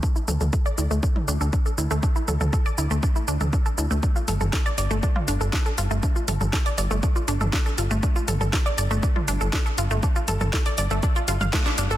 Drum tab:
HH |----------------|----------------|--o---o---o---o-|--o--oo---o---o-|
SH |xxxxxxxxx-xxxxxx|xxxxxxxxxxxxxxxx|xxxxxxxxx-xxxxxx|xxxxxxxxxxxxxxxx|
SD |----------------|----------------|----o-------o---|----o-------o---|
T2 |--oo-----o------|--oo-------o----|--oo-----o------|--oo-------o----|
BD |o---o---o---o---|o---o---o---o---|o---o---o---o---|o---o---o---o---|

HH |--o---o---o---o-|--o--oo---o---o-|
SH |xxxxxxxxx-xxxxxx|xxxxxxxxxxxxxxxx|
SD |----o-------o---|----o-------oo--|
T2 |--oo-----o------|--oo-------o----|
BD |o---o---o---o---|o---o---o---o---|